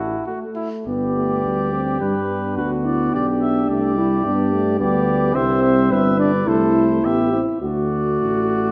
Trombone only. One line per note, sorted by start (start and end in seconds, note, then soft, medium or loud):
0.28 0.44 A3 soft
0.86 1.14 B3 soft
1.16 1.43 A3 soft
1.44 2.00 G3 soft
2.01 2.14 G3 soft
2.29 3.70 B3 soft
3.69 3.98 A3 soft
3.97 4.24 G3 medium
4.24 4.54 B3 soft
4.53 4.80 A3 soft
4.78 5.34 G3 soft
5.35 6.48 G3 medium
6.46 7.04 A3 medium
7.03 7.32 B3 medium
7.32 7.46 C4 soft
7.62 8.72 A3 soft